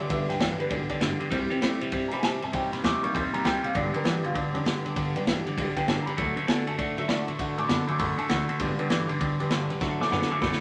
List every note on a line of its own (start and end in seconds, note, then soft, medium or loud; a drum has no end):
0.00 0.08 G3 medium
0.00 0.11 D5 medium
0.08 0.22 G1 loud
0.08 0.28 G2 medium
0.08 0.27 G2 medium
0.08 0.29 D3 medium
0.08 1.27 D3 medium
0.08 0.28 D3 medium
0.08 0.28 G3 medium
0.08 1.28 G3 medium
0.08 0.27 B3 medium
0.08 1.28 B3 medium
0.08 0.27 D4 medium
0.08 0.26 G4 medium
0.08 0.29 E5 medium
0.08 kick loud
0.08 ride medium
0.27 0.36 D2 medium
0.27 0.39 G2 medium
0.27 0.39 D3 medium
0.27 0.38 G3 soft
0.27 0.39 B3 soft
0.27 0.39 D4 soft
0.27 0.39 G4 medium
0.27 0.40 G5 loud
0.27 snare soft
0.27 ride medium
0.38 0.52 B1 medium
0.38 0.59 G2 medium
0.38 0.57 G2 medium
0.38 0.59 D3 medium
0.38 0.58 E3 medium
0.38 0.59 G3 medium
0.38 0.58 B3 medium
0.38 0.57 D4 medium
0.38 0.57 G4 loud
0.38 0.59 D5 medium
0.38 snare loud
0.38 ride medium
0.58 0.69 G2 medium
0.58 0.69 D3 medium
0.58 0.68 G3 soft
0.58 0.68 B3 soft
0.58 0.70 D4 medium
0.58 0.70 G4 medium
0.58 0.71 B4 medium
0.58 muted upright bass stroke medium
0.58 ride medium
0.69 0.82 B1 loud
0.69 0.88 G2 medium
0.69 0.88 D3 medium
0.69 0.89 G3 medium
0.69 0.90 B3 medium
0.69 0.88 D4 medium
0.69 0.88 G4 medium
0.69 0.89 D5 medium
0.69 kick loud
0.69 ride medium
0.89 0.99 G2 medium
0.89 1.00 D3 medium
0.89 1.00 G3 soft
0.89 1.00 B3 soft
0.89 1.00 D4 medium
0.89 1.01 G4 medium
0.89 1.20 D5 loud
0.89 muted upright bass stroke medium
0.89 kick medium
0.89 ride medium
1.00 1.13 G1 medium
1.00 1.18 G2 medium
1.00 1.20 G2 medium
1.00 1.20 D3 medium
1.00 1.18 D3 loud
1.00 1.20 G3 medium
1.00 1.19 B3 medium
1.00 1.19 D4 medium
1.00 1.18 G4 medium
1.00 snare loud
1.00 ride medium
1.19 1.30 G2 medium
1.19 1.30 D3 medium
1.19 1.30 G3 soft
1.19 1.31 B3 soft
1.19 1.32 D4 medium
1.19 1.31 G4 medium
1.19 muted upright bass stroke medium
1.19 ride medium
1.30 1.43 C2 medium
1.30 1.50 C3 medium
1.30 1.48 C3 medium
1.30 1.48 G3 loud
1.30 1.51 G3 medium
1.30 1.51 C4 medium
1.30 1.50 E4 loud
1.30 1.49 G4 loud
1.30 kick loud
1.30 ride medium
1.50 1.60 C3 medium
1.50 1.90 E3 medium
1.50 1.90 G3 medium
1.50 1.61 G3 medium
1.50 1.91 C4 medium
1.50 1.61 C4 soft
1.50 1.62 E4 medium
1.50 1.62 G4 medium
1.50 muted upright bass stroke medium
1.50 ride medium
1.61 1.73 E2 medium
1.61 1.79 C3 medium
1.61 1.81 C3 medium
1.61 1.81 G3 medium
1.61 1.80 A3 medium
1.61 1.82 C4 loud
1.61 1.82 E4 loud
1.61 1.80 G4 loud
1.61 snare loud
1.61 ride medium
1.81 1.88 E2 medium
1.81 1.91 C3 medium
1.81 1.91 G3 medium
1.81 1.92 C4 soft
1.81 1.92 E4 medium
1.81 1.93 G4 medium
1.81 ride medium
1.92 2.04 G2 loud
1.92 2.10 C3 medium
1.92 2.12 G3 medium
1.92 2.10 G3 medium
1.92 2.12 C4 medium
1.92 2.12 E4 medium
1.92 2.10 G4 medium
1.92 kick loud
1.92 ride medium
2.08 2.18 A2 medium
2.08 2.22 C3 medium
2.08 2.23 G4 medium
2.08 2.10 A#5 medium
2.08 ride medium
2.12 2.22 G3 medium
2.12 2.23 C4 soft
2.12 2.23 E4 medium
2.12 2.24 B5 loud
2.19 2.22 G#5 medium
2.19 snare loud
2.19 ride medium
2.23 2.35 A2 medium
2.23 2.40 C3 medium
2.23 2.42 C3 medium
2.23 2.41 G3 loud
2.23 2.43 G3 medium
2.23 2.43 C4 medium
2.23 2.43 E4 medium
2.23 2.42 G4 medium
2.23 2.42 A5 loud
2.42 2.49 G2 medium
2.42 2.51 C3 medium
2.42 2.52 G3 medium
2.42 2.54 C4 soft
2.42 2.54 E4 medium
2.42 2.54 G4 medium
2.42 2.54 A5 medium
2.42 ride medium
2.52 2.65 C2 medium
2.52 2.70 C3 medium
2.52 2.73 C3 medium
2.52 2.70 G3 loud
2.52 2.73 G3 medium
2.52 2.73 A#3 medium
2.52 2.72 D#4 medium
2.52 2.71 G4 medium
2.52 2.73 G5 loud
2.52 kick loud
2.52 ride loud
2.72 2.79 G2 medium
2.72 2.83 C3 medium
2.72 2.83 G3 medium
2.72 2.83 A#3 soft
2.72 2.83 D#4 soft
2.72 2.83 G4 medium
2.72 snare soft
2.72 ride medium
2.83 2.95 D#2 medium
2.83 3.03 C3 medium
2.83 3.01 C3 medium
2.83 3.03 G3 medium
2.83 3.01 A3 loud
2.83 3.03 A#3 medium
2.83 3.02 D#4 medium
2.83 3.01 G4 medium
2.83 3.03 D6 loud
2.83 snare loud
2.83 ride medium
3.01 3.14 C3 medium
3.01 3.20 D#3 medium
3.01 3.14 G3 medium
3.01 3.21 A#3 medium
3.01 3.12 A#3 soft
3.01 3.21 D4 medium
3.01 3.13 D#4 medium
3.01 3.13 G4 medium
3.01 3.14 C#6 medium
3.01 muted upright bass stroke medium
3.01 ride medium
3.12 3.26 D#2 loud
3.12 3.32 C3 medium
3.12 3.33 G3 medium
3.12 3.32 G3 loud
3.12 3.33 A#3 medium
3.12 3.33 D#4 medium
3.12 3.32 G4 medium
3.12 3.33 C6 medium
3.12 kick loud
3.12 ride medium
3.33 3.43 C3 medium
3.33 3.44 G3 medium
3.33 3.43 A#3 soft
3.33 3.44 D#4 medium
3.33 3.44 G4 medium
3.33 3.44 A#5 medium
3.33 muted upright bass stroke medium
3.33 ride medium
3.43 3.56 C2 medium
3.43 3.63 C3 medium
3.43 3.62 C3 medium
3.43 3.63 G3 medium
3.43 3.62 G3 loud
3.43 3.63 A#3 medium
3.43 3.62 D#4 medium
3.43 3.61 G4 medium
3.43 3.64 G5 loud
3.43 snare loud
3.43 ride medium
3.62 3.74 C3 medium
3.62 3.74 G3 medium
3.62 3.74 A#3 soft
3.62 3.75 D#4 medium
3.62 3.74 G4 medium
3.62 3.75 F5 medium
3.62 muted upright bass stroke medium
3.62 ride medium
3.74 3.87 G1 medium
3.74 3.94 G2 medium
3.74 3.92 G2 medium
3.74 3.94 D3 medium
3.74 3.92 D3 loud
3.74 3.93 G3 medium
3.74 3.93 B3 medium
3.74 3.92 D4 medium
3.74 3.91 G4 medium
3.74 3.94 D5 loud
3.74 kick loud
3.74 ride medium
3.92 4.03 G2 medium
3.92 4.04 D3 medium
3.92 4.03 G3 soft
3.92 4.34 G3 medium
3.92 4.03 B3 soft
3.92 4.34 B3 medium
3.92 4.04 D4 soft
3.92 4.04 G4 medium
3.92 muted upright bass stroke medium
3.92 ride medium
3.96 4.35 D4 medium
3.96 4.06 A#4 medium
4.04 4.16 B1 medium
4.04 4.24 G2 medium
4.04 4.22 G2 medium
4.04 4.24 D3 medium
4.04 4.22 E3 loud
4.04 4.24 G3 medium
4.04 4.24 B3 medium
4.04 4.23 D4 medium
4.04 4.22 G4 medium
4.04 4.25 G4 loud
4.04 snare loud
4.04 ride medium
4.23 4.31 B1 medium
4.23 4.33 G2 medium
4.23 4.33 D3 medium
4.23 4.33 G3 soft
4.23 4.33 B3 medium
4.23 4.34 D4 medium
4.23 4.36 F4 loud
4.23 4.35 G4 medium
4.23 ride medium
4.34 4.47 D2 loud
4.34 4.52 G2 medium
4.34 4.53 D3 medium
4.34 4.54 G3 medium
4.34 4.54 B3 medium
4.34 4.54 D4 medium
4.34 4.55 D4 medium
4.34 4.53 G4 medium
4.34 kick loud
4.34 ride medium
4.52 4.61 E2 loud
4.52 4.65 G2 medium
4.52 4.65 D3 medium
4.52 4.65 B3 medium
4.52 4.54 C#4 medium
4.52 4.65 D4 medium
4.52 4.65 G4 medium
4.52 ride medium
4.56 4.65 G3 soft
4.56 5.15 D4 loud
4.65 4.77 E2 medium
4.65 4.85 G2 medium
4.65 4.83 G2 medium
4.65 4.85 D3 medium
4.65 4.83 D3 medium
4.65 4.85 G3 medium
4.65 4.85 B3 medium
4.65 4.85 D4 medium
4.65 4.84 G4 medium
4.65 snare loud
4.65 ride medium
4.85 4.92 D2 medium
4.85 4.95 G2 medium
4.85 4.95 D3 medium
4.85 4.95 G3 soft
4.85 4.96 B3 soft
4.85 4.96 D4 medium
4.85 4.96 G4 medium
4.85 ride medium
4.96 5.08 G1 loud
4.96 5.15 G2 medium
4.96 5.14 G2 medium
4.96 5.16 D3 medium
4.96 5.14 D3 loud
4.96 5.16 G3 medium
4.96 5.16 B3 medium
4.96 5.16 D4 loud
4.96 5.15 G4 loud
4.96 kick loud
4.96 ride medium
5.15 5.22 D2 medium
5.15 5.26 G2 medium
5.15 5.26 D3 medium
5.15 5.33 G3 medium
5.15 5.26 G3 medium
5.15 5.34 B3 medium
5.15 5.27 B3 medium
5.15 5.34 D4 medium
5.15 5.27 D4 medium
5.15 5.27 G4 medium
5.15 ride medium
5.26 5.38 B1 medium
5.26 5.46 G2 medium
5.26 5.45 G2 medium
5.26 5.46 D3 loud
5.26 5.45 E3 medium
5.26 5.46 G3 medium
5.26 5.47 B3 loud
5.26 5.46 D4 loud
5.26 5.45 G4 loud
5.26 snare loud
5.26 ride medium
5.46 5.56 G2 medium
5.46 5.56 D3 medium
5.46 5.57 G3 medium
5.46 5.58 B3 medium
5.46 5.58 D4 medium
5.46 5.58 G4 medium
5.46 muted upright bass stroke medium
5.46 ride medium
5.57 5.69 B1 loud
5.57 5.74 G2 medium
5.57 5.75 D3 medium
5.57 5.77 G3 medium
5.57 5.78 B3 medium
5.57 5.77 D4 medium
5.57 5.76 G4 medium
5.57 kick loud
5.57 ride medium
5.75 5.87 G2 medium
5.75 5.87 D3 medium
5.75 5.86 G3 medium
5.75 5.87 G3 soft
5.75 5.86 B3 soft
5.75 5.88 B3 soft
5.75 5.87 D4 medium
5.75 5.88 D4 medium
5.75 5.88 G4 medium
5.75 5.87 G5 loud
5.75 muted upright bass stroke medium
5.75 kick medium
5.75 ride medium
5.88 5.99 G1 medium
5.88 6.05 G2 medium
5.88 6.07 G2 medium
5.88 6.05 D3 loud
5.88 6.07 D3 medium
5.88 6.07 G3 medium
5.88 6.07 B3 medium
5.88 6.07 D4 medium
5.88 6.07 G4 medium
5.88 6.06 A5 medium
5.88 snare loud
5.88 ride medium
6.03 6.17 G2 medium
6.03 6.04 A#5 medium
6.03 6.47 B5 loud
6.07 6.16 D3 medium
6.07 6.19 G3 soft
6.07 6.19 B3 medium
6.07 6.18 D4 medium
6.07 6.19 G4 medium
6.07 muted upright bass stroke medium
6.07 ride medium
6.17 6.30 D2 loud
6.17 6.35 D3 medium
6.17 6.37 D3 medium
6.17 6.40 F#3 medium
6.17 6.35 A3 loud
6.17 6.40 A3 medium
6.17 6.38 A3 medium
6.17 6.41 D4 medium
6.17 6.38 D4 medium
6.17 6.38 F#4 medium
6.17 6.37 A4 medium
6.17 kick loud
6.17 ride medium
6.36 6.46 D3 medium
6.36 6.47 A3 medium
6.36 6.49 F#4 soft
6.36 6.49 A4 medium
6.36 muted upright bass stroke medium
6.36 ride medium
6.40 6.49 D4 soft
6.47 6.60 F#2 medium
6.47 6.65 D3 medium
6.47 6.68 D3 medium
6.47 6.68 A3 medium
6.47 6.65 B3 medium
6.47 6.68 D4 loud
6.47 6.68 F#4 medium
6.47 6.67 A4 medium
6.47 6.66 A5 medium
6.47 snare loud
6.47 ride medium
6.67 6.75 F#2 loud
6.67 6.77 D3 medium
6.67 6.77 A3 medium
6.67 6.79 D4 soft
6.67 6.80 F#4 soft
6.67 6.79 A4 medium
6.67 6.79 A5 medium
6.67 ride medium
6.78 6.90 A2 loud
6.78 6.96 D3 medium
6.78 6.96 A3 loud
6.78 6.98 A3 medium
6.78 6.98 D4 medium
6.78 6.97 F#4 medium
6.78 6.96 A4 medium
6.78 6.97 D5 medium
6.78 kick loud
6.78 ride medium
6.97 7.04 B2 medium
6.97 7.07 D3 medium
6.97 7.07 F#3 medium
6.97 7.08 A3 soft
6.97 7.07 A3 medium
6.97 7.08 D4 medium
6.97 7.09 D4 medium
6.97 7.09 F#4 medium
6.97 7.09 A4 medium
6.97 7.09 E5 medium
6.97 ride medium
7.08 7.20 C3 loud
7.08 7.26 D3 medium
7.08 7.28 D3 medium
7.08 7.26 A3 loud
7.08 7.28 A3 medium
7.08 7.28 D4 medium
7.08 7.27 F#4 medium
7.08 7.26 A4 medium
7.08 7.27 D5 loud
7.08 snare loud
7.08 ride medium
7.27 7.35 A2 medium
7.27 7.37 D3 medium
7.27 7.38 A3 medium
7.27 7.38 D4 soft
7.27 7.39 F#4 medium
7.27 7.39 A4 medium
7.27 ride medium
7.39 7.51 D2 loud
7.39 7.56 D3 medium
7.39 7.58 D3 medium
7.39 7.58 A3 medium
7.39 7.57 A3 loud
7.39 7.58 D4 medium
7.39 7.57 F#4 medium
7.39 7.56 A4 loud
7.39 kick loud
7.39 ride medium
7.57 7.65 A2 medium
7.57 7.67 D3 medium
7.57 7.68 A3 medium
7.57 7.69 D4 soft
7.57 7.69 F#4 medium
7.57 7.69 A4 medium
7.57 7.69 D6 medium
7.57 ride medium
7.68 7.81 F#2 loud
7.68 7.86 D3 medium
7.68 7.88 D3 medium
7.68 7.89 A3 medium
7.68 7.86 B3 medium
7.68 7.88 D4 medium
7.68 7.87 F#4 medium
7.68 7.86 A4 medium
7.68 7.88 B5 loud
7.68 snare loud
7.68 ride medium
7.87 7.98 D3 medium
7.87 8.06 F#3 medium
7.87 7.98 A3 medium
7.87 8.06 A3 medium
7.87 8.07 D4 medium
7.87 7.98 D4 soft
7.87 7.99 F#4 medium
7.87 7.99 A4 medium
7.87 8.00 D6 medium
7.87 muted upright bass stroke medium
7.87 ride medium
7.99 8.12 F#2 loud
7.99 8.16 D3 medium
7.99 8.18 A3 medium
7.99 8.17 A3 loud
7.99 8.18 D4 medium
7.99 8.17 F#4 medium
7.99 8.16 A4 medium
7.99 8.18 B5 medium
7.99 kick loud
7.99 ride loud
8.17 8.28 D3 medium
8.17 8.28 A3 medium
8.17 8.28 D4 medium
8.17 8.29 F#4 medium
8.17 8.29 A4 medium
8.17 8.30 A5 medium
8.17 muted upright bass stroke medium
8.17 ride medium
8.29 8.42 D2 loud
8.29 8.48 D3 medium
8.29 8.47 D3 medium
8.29 8.49 A3 medium
8.29 8.47 A3 loud
8.29 8.49 D4 medium
8.29 8.48 F#4 medium
8.29 8.47 A4 medium
8.29 8.89 F#5 loud
8.29 snare loud
8.29 ride medium
8.48 8.59 D3 medium
8.48 8.59 A3 medium
8.48 8.60 D4 soft
8.48 8.60 F#4 medium
8.48 8.60 A4 medium
8.48 muted upright bass stroke medium
8.48 ride medium
8.60 8.72 G1 loud
8.60 8.77 G2 medium
8.60 8.79 G2 medium
8.60 8.77 D3 loud
8.60 8.79 D3 medium
8.60 8.78 G3 medium
8.60 8.78 D4 medium
8.60 8.78 G4 medium
8.60 8.77 B4 medium
8.60 kick loud
8.60 ride loud
8.78 8.88 G2 medium
8.78 8.90 D3 medium
8.78 8.97 G3 medium
8.78 8.89 G3 soft
8.78 8.97 B3 medium
8.78 8.97 D4 medium
8.78 8.89 D4 medium
8.78 8.90 G4 medium
8.78 8.90 B4 medium
8.78 muted upright bass stroke medium
8.78 ride medium
8.90 9.03 B1 medium
8.90 9.09 G2 loud
8.90 9.07 G2 medium
8.90 9.10 D3 loud
8.90 9.07 E3 loud
8.90 9.08 G3 loud
8.90 9.08 D4 loud
8.90 9.08 G4 loud
8.90 9.07 B4 loud
8.90 snare loud
8.90 ride medium
9.08 9.17 B1 loud
9.08 9.18 G2 medium
9.08 9.19 D3 loud
9.08 9.19 G3 medium
9.08 9.19 D4 medium
9.08 9.20 G4 medium
9.08 9.20 B4 medium
9.08 ride medium
9.19 9.32 D2 loud
9.19 9.37 G2 medium
9.19 9.38 D3 loud
9.19 9.39 G3 medium
9.19 9.39 D4 medium
9.19 9.38 G4 medium
9.19 9.38 B4 medium
9.19 kick loud
9.19 ride medium
9.39 9.47 E2 loud
9.39 9.50 G2 medium
9.39 9.50 D3 medium
9.39 9.50 G3 medium
9.39 9.49 G3 medium
9.39 9.50 B3 soft
9.39 9.50 D4 medium
9.39 9.50 G4 medium
9.39 9.51 B4 medium
9.39 ride medium
9.50 9.63 E2 loud
9.50 9.70 G2 medium
9.50 9.68 G2 medium
9.50 9.70 D3 loud
9.50 9.69 D3 loud
9.50 9.70 G3 loud
9.50 9.70 D4 loud
9.50 9.69 G4 medium
9.50 9.69 B4 loud
9.50 snare loud
9.50 ride medium
9.70 9.77 C#2 medium
9.70 9.80 G2 medium
9.70 9.80 D3 medium
9.70 9.80 G3 medium
9.70 9.80 D4 medium
9.70 9.81 G4 medium
9.70 9.81 B4 medium
9.70 ride medium
9.80 9.93 D2 loud
9.80 10.00 D3 medium
9.80 9.98 D3 medium
9.80 10.28 F#3 medium
9.80 10.28 A3 medium
9.80 10.00 A3 medium
9.80 9.99 A3 loud
9.80 9.99 D4 loud
9.80 10.28 D4 medium
9.80 9.99 F#4 medium
9.80 9.98 A4 loud
9.80 kick loud
9.80 snare medium
9.99 10.07 A2 loud
9.99 10.10 D3 medium
9.99 10.11 A3 medium
9.99 10.09 D4 soft
9.99 10.10 F#4 medium
9.99 10.10 A4 medium
9.99 10.12 D6 loud
9.99 snare medium
10.10 10.23 F#2 medium
10.10 10.30 D3 medium
10.10 10.29 D3 medium
10.10 10.30 A3 medium
10.10 10.29 B3 loud
10.10 10.30 D4 medium
10.10 10.29 F#4 medium
10.10 10.27 A4 medium
10.10 10.30 B5 medium
10.10 snare medium
10.22 snare medium
10.29 10.41 D3 medium
10.29 10.41 A3 medium
10.29 10.40 D4 soft
10.29 10.40 F#4 soft
10.29 10.41 A4 medium
10.29 10.42 D6 medium
10.29 muted upright bass stroke medium
10.40 10.53 F#2 loud
10.40 10.59 D3 medium
10.40 10.60 A3 medium
10.40 10.59 A3 loud
10.40 10.60 D4 medium
10.40 10.59 F#4 medium
10.40 10.58 A4 medium
10.40 10.60 B5 medium
10.40 kick loud
10.40 snare medium
10.52 snare medium